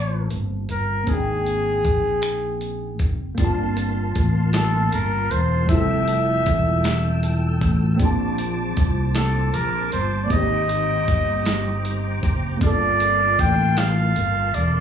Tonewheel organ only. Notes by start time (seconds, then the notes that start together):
3.38 A#3 F5 A5 C6
5.71 A4 G5 E6
8.00 C5 A5 D6
10.31 C5 G5 A#5
12.62 A#3 F5 A5 C6